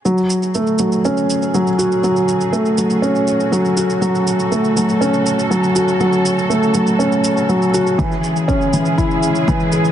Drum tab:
SH |xxxxxxxxxxxxxxxx|xxxxxxxxxxxxxxxx|xxxxxxxxxxxxxxxx|xxxxxxxxxxxxxxxx|
BD |----------------|----------------|----------------|----------------|

SH |xxxxxxxxxxxxxxxx|
BD |o---o---o---o---|